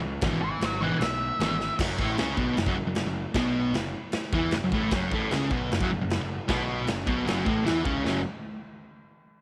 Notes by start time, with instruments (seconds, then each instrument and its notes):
0.01 picked electric bass C#2
0.21 picked electric bass G#1, distorted electric guitar E2 B2 E3, kick, snare, crash
0.42 lead electric guitar B4 E5
0.60 picked electric bass G#1, snare, crash
0.64 lead electric guitar C#5 F#5
0.82 distorted electric guitar E2 B2 E3, lead electric guitar E5 G#5
0.99 picked electric bass B1, lead electric guitar E5, snare, crash
1.39 picked electric bass G#1, distorted electric guitar E2 B2 E3, snare, crash
1.60 snare
1.79 picked electric bass F#1, distorted electric guitar F#2 F#3, kick, snare, crash
1.99 picked electric bass A1, distorted electric guitar A2 A3, kick
2.18 picked electric bass C#2, distorted electric guitar C#3 C#4, snare, crash
2.37 picked electric bass B1, distorted electric guitar B2 B3, kick
2.57 picked electric bass F#1, distorted electric guitar F#2, snare, crash
2.66 picked electric bass F#1, distorted electric guitar F#2 F#3, kick
2.76 picked electric bass F#1, distorted electric guitar F#2
2.85 picked electric bass F#1, distorted electric guitar F#2
2.95 snare, crash
3.04 picked electric bass F#1, distorted electric guitar F#2
3.34 picked electric bass B1, distorted electric guitar B2 B3, kick, snare, crash
3.72 picked electric bass F#1, distorted electric guitar F#2, snare, crash
4.12 snare, crash
4.33 picked electric bass E2, distorted electric guitar E3 E4, kick
4.51 picked electric bass F#1, distorted electric guitar F#2, snare, crash
4.62 picked electric bass F#1, distorted electric guitar F#2
4.72 picked electric bass A1, distorted electric guitar A2 A3, kick
4.91 picked electric bass F#1, distorted electric guitar F#2 F#3, kick, snare, crash
5.11 picked electric bass A1, distorted electric guitar A2 A3, kick
5.31 picked electric bass C#2, distorted electric guitar C#3 C#4, snare, crash
5.51 picked electric bass B1, distorted electric guitar B2 B3, kick
5.71 picked electric bass F#1, distorted electric guitar F#2, snare, crash
5.81 picked electric bass F#1, distorted electric guitar F#2 F#3, kick
5.91 picked electric bass F#1, distorted electric guitar F#2
6.01 picked electric bass F#1, distorted electric guitar F#2
6.10 snare, crash
6.20 picked electric bass F#1, distorted electric guitar F#2
6.48 picked electric bass B1, distorted electric guitar B2 B3, kick, snare, crash
6.87 picked electric bass F#1, distorted electric guitar F#2, snare, crash
7.07 picked electric bass B1, distorted electric guitar B2 B3, kick
7.25 picked electric bass F#1, distorted electric guitar F#2 F#3, snare, crash
7.45 picked electric bass A1, distorted electric guitar A2 A3, kick
7.65 picked electric bass E2, distorted electric guitar E3 E4, snare, crash
7.85 picked electric bass C#2, distorted electric guitar C#3 C#4, kick
8.04 picked electric bass F#1, distorted electric guitar F#2 C#3 F#3, snare